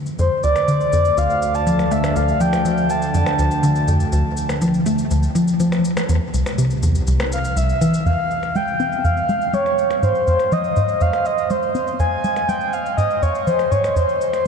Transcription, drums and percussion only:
0.06 cabasa
0.19 cabasa
0.43 cabasa
0.56 percussion blips, cabasa
0.68 cabasa
0.80 cabasa
0.93 cabasa
1.05 cabasa
1.17 cabasa
1.30 cabasa
1.42 cabasa
1.54 cabasa
1.67 cabasa
1.79 percussion blips, cabasa
1.91 cabasa
2.04 percussion blips, cabasa
2.16 cabasa
2.28 cabasa
2.41 cabasa
2.53 percussion blips, cabasa
2.65 cabasa
2.78 cabasa
2.90 cabasa
3.02 cabasa
3.14 cabasa
3.26 percussion blips, cabasa
3.39 cabasa
3.51 cabasa
3.63 cabasa
3.76 cabasa
3.88 cabasa
4.00 cabasa
4.12 cabasa
4.37 cabasa
4.49 percussion blips, cabasa
4.61 cabasa
4.74 cabasa
4.86 cabasa
4.98 cabasa
5.11 cabasa
5.23 cabasa
5.35 cabasa
5.48 cabasa
5.60 cabasa
5.72 percussion blips, cabasa
5.85 cabasa
5.97 percussion blips, cabasa
6.09 cabasa
6.34 cabasa
6.46 percussion blips, cabasa
6.58 cabasa
6.70 cabasa
6.83 cabasa
6.95 cabasa
7.07 cabasa
7.20 percussion blips, cabasa
7.32 cabasa
7.45 cabasa
7.57 cabasa
7.69 cabasa
7.81 cabasa
7.94 cabasa
8.06 cabasa
8.31 cabasa
8.43 percussion blips, cabasa
8.55 cabasa
8.67 cabasa
8.80 cabasa
8.92 cabasa
9.05 cabasa
9.17 cabasa
9.29 cabasa
9.41 cabasa
9.54 cabasa
9.66 percussion blips, cabasa
9.78 cabasa
9.91 percussion blips, cabasa
10.03 cabasa
10.15 cabasa
10.27 cabasa
10.40 percussion blips, cabasa
10.52 cabasa
10.64 cabasa
10.76 cabasa
10.88 cabasa
11.01 cabasa
11.13 percussion blips, cabasa
11.25 cabasa
11.38 cabasa
11.50 cabasa
11.63 cabasa
11.75 cabasa
11.87 cabasa
12.00 cabasa
12.24 cabasa
12.36 percussion blips, cabasa
12.49 cabasa
12.61 cabasa
12.73 cabasa
12.86 cabasa
12.98 cabasa
13.10 cabasa
13.23 cabasa
13.35 cabasa
13.47 cabasa
13.59 percussion blips, cabasa
13.72 cabasa
13.84 percussion blips, cabasa
13.96 cabasa
14.09 cabasa
14.21 cabasa
14.33 percussion blips, cabasa

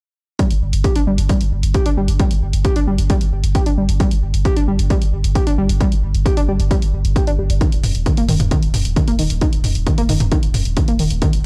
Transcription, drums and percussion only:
0.39 kick, closed hi-hat
0.51 closed hi-hat
0.73 closed hi-hat
0.84 kick, closed hi-hat
0.96 closed hi-hat
1.18 closed hi-hat
1.29 kick, closed hi-hat
1.41 closed hi-hat
1.63 closed hi-hat
1.74 kick, closed hi-hat
1.86 closed hi-hat
2.08 closed hi-hat
2.19 kick, closed hi-hat
2.31 closed hi-hat
2.53 closed hi-hat
2.65 kick, closed hi-hat
2.76 closed hi-hat
2.98 closed hi-hat
3.10 kick, closed hi-hat
3.21 closed hi-hat
3.44 closed hi-hat
3.55 kick, closed hi-hat
3.66 closed hi-hat
3.89 closed hi-hat
4.00 kick, closed hi-hat
4.11 closed hi-hat
4.34 closed hi-hat
4.45 kick, closed hi-hat
4.57 closed hi-hat
4.79 closed hi-hat
4.90 kick, closed hi-hat
5.02 closed hi-hat
5.24 closed hi-hat
5.35 kick, closed hi-hat
5.47 closed hi-hat
5.69 closed hi-hat
5.80 kick, closed hi-hat
5.92 closed hi-hat
6.15 closed hi-hat
6.26 kick, closed hi-hat
6.37 closed hi-hat
6.60 closed hi-hat
6.71 kick, closed hi-hat
6.82 closed hi-hat
7.05 closed hi-hat
7.16 kick, closed hi-hat
7.27 closed hi-hat
7.50 closed hi-hat
7.61 kick, closed hi-hat
7.72 closed hi-hat
7.84 mid tom, open hi-hat
7.95 closed hi-hat
8.06 kick, closed hi-hat
8.17 closed hi-hat
8.29 mid tom, open hi-hat
8.40 closed hi-hat, mid tom
8.51 kick, closed hi-hat
8.63 closed hi-hat
8.74 mid tom, open hi-hat
8.85 closed hi-hat
8.96 kick, closed hi-hat
9.08 closed hi-hat
9.19 open hi-hat
9.30 closed hi-hat
9.41 kick, closed hi-hat
9.53 closed hi-hat
9.64 mid tom, open hi-hat
9.75 closed hi-hat
9.87 kick, closed hi-hat
9.98 closed hi-hat
10.09 mid tom, open hi-hat
10.20 closed hi-hat, mid tom
10.32 kick, closed hi-hat
10.43 closed hi-hat
10.54 mid tom, open hi-hat
10.65 closed hi-hat
10.77 kick, closed hi-hat
10.88 closed hi-hat
10.99 open hi-hat
11.10 closed hi-hat
11.22 kick, closed hi-hat
11.33 closed hi-hat

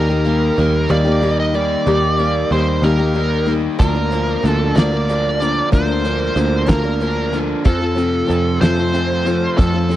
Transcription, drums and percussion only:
3.80 kick, closed hi-hat
4.12 closed hi-hat
4.45 closed hi-hat
4.77 snare, closed hi-hat
5.10 closed hi-hat
5.42 closed hi-hat
5.73 kick, closed hi-hat
6.05 closed hi-hat
6.37 closed hi-hat
6.69 kick, snare, closed hi-hat
7.01 closed hi-hat
7.34 closed hi-hat
7.65 kick, closed hi-hat
7.98 closed hi-hat
8.30 closed hi-hat
8.62 snare, closed hi-hat
8.94 closed hi-hat
9.27 closed hi-hat
9.59 kick, closed hi-hat
9.91 closed hi-hat

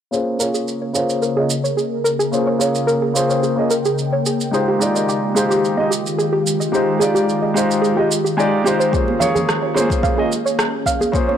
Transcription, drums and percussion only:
0.13 shaker
0.40 shaker
0.55 shaker
0.68 shaker
0.95 shaker
1.10 shaker
1.23 shaker
1.50 shaker
1.65 shaker
1.78 shaker
2.06 shaker
2.20 shaker
2.33 shaker
2.61 shaker
2.75 shaker
2.89 shaker
3.16 shaker
3.30 shaker
3.43 shaker
3.71 shaker
3.85 shaker
3.98 shaker
4.26 shaker
4.41 shaker
4.54 shaker
4.81 shaker
4.96 shaker
5.09 shaker
5.37 shaker
5.51 shaker
5.65 shaker
5.92 shaker
6.07 shaker
6.20 shaker
6.47 shaker
6.61 shaker
6.74 shaker
7.02 shaker
7.16 shaker
7.29 shaker
7.57 shaker
7.71 shaker
7.84 shaker
8.12 shaker
8.26 shaker
8.40 shaker
8.66 shaker
8.81 shaker
8.93 kick, shaker
9.08 high conga
9.21 low conga, shaker
9.36 low conga, shaker
9.49 cross-stick, shaker
9.76 high conga, shaker
9.90 kick, shaker
10.03 kick, shaker
10.32 shaker
10.47 shaker
10.59 cross-stick, shaker
10.86 kick, shaker
11.01 high conga, shaker
11.13 kick, shaker
11.29 high conga

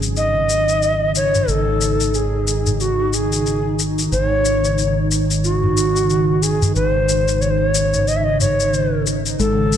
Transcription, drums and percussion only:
0.03 shaker
0.17 shaker
0.35 udu
0.49 shaker
0.69 shaker
0.82 shaker
1.15 shaker
1.35 udu, shaker
1.48 shaker
1.81 shaker
2.00 shaker
2.14 shaker
2.48 shaker
2.67 udu, shaker
2.80 shaker
3.13 shaker
3.32 shaker
3.47 shaker
3.79 shaker
3.99 shaker
4.12 shaker
4.45 shaker
4.65 shaker
4.78 shaker
5.11 shaker
5.31 shaker
5.44 shaker
5.64 udu
5.77 shaker
5.96 shaker
6.10 shaker
6.43 shaker
6.62 udu, shaker
6.76 shaker
7.09 shaker
7.28 shaker
7.42 shaker
7.75 shaker
7.94 udu, shaker
8.08 shaker
8.41 udu, shaker
8.60 shaker
8.74 shaker
9.07 shaker
9.26 shaker
9.40 shaker
9.73 shaker

